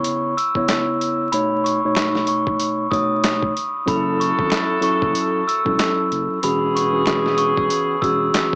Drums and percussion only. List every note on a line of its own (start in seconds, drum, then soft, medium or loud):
0.04 closed hi-hat loud
0.38 closed hi-hat medium
0.55 kick medium
0.68 finger snap medium
0.68 snare loud
0.68 clap medium
0.68 closed hi-hat loud
1.01 closed hi-hat medium
1.33 closed hi-hat loud
1.66 closed hi-hat medium
1.95 finger snap medium
1.95 snare loud
1.95 clap loud
1.95 closed hi-hat medium
2.15 snare soft
2.27 closed hi-hat medium
2.47 kick loud
2.60 closed hi-hat loud
2.92 kick loud
2.92 closed hi-hat medium
3.24 finger snap medium
3.24 snare loud
3.24 clap medium
3.24 closed hi-hat loud
3.43 kick loud
3.57 closed hi-hat medium
3.88 kick loud
3.88 closed hi-hat loud
4.21 closed hi-hat medium
4.39 kick loud
4.50 finger snap medium
4.50 snare loud
4.50 clap loud
4.50 closed hi-hat medium
4.82 closed hi-hat medium
5.02 kick loud
5.15 closed hi-hat loud
5.49 closed hi-hat medium
5.66 kick loud
5.79 finger snap medium
5.79 snare loud
5.79 clap medium
5.79 closed hi-hat loud
6.12 closed hi-hat medium
6.43 closed hi-hat medium
6.77 closed hi-hat medium
7.06 finger snap medium
7.06 snare loud
7.06 clap loud
7.06 closed hi-hat medium
7.26 snare soft
7.38 closed hi-hat medium
7.57 kick loud
7.70 closed hi-hat loud
8.02 kick loud
8.02 closed hi-hat medium
8.34 finger snap medium
8.34 snare loud
8.34 clap medium
8.34 closed hi-hat loud